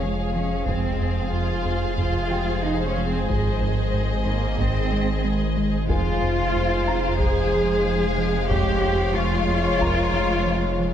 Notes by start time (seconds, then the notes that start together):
Already playing: F1 F3 G#3 F4 G#4 C#5 F5
0.02 F3 G#3
0.35 F3 C#4
0.67 F1 F2 F3 G#3 C4 F4 G#4 C5 F5, taiko
1.01 F2
1.32 F2 F4
1.65 F2
1.98 F2 F4, taiko
2.30 F3 G4 G5
2.63 F3 D#4
2.85 C#4
2.97 F3
3.07 C4
3.28 G#1 G#2 D#3 G#3 D#4 D#5, taiko
3.62 G#2
3.94 G#2
4.26 G#2 A#3
4.58 G#2 C4, taiko
4.93 G#3
5.25 G#3
5.57 G#3
5.89 F1 F2 F3 G#3 F4 G#4 C5 F5 G#5, taiko
6.23 F2
6.56 F2
6.87 F2 A#5
7.20 F2 G#4, taiko
7.53 F3
7.85 F3
8.18 F3
8.50 F2 G#3 F4 G4 C#5, taiko
8.83 F2
9.14 F2 F4 C#6
9.49 F2
9.81 F2 A#4 A#5, taiko
10.14 F3
10.47 F3
10.80 F3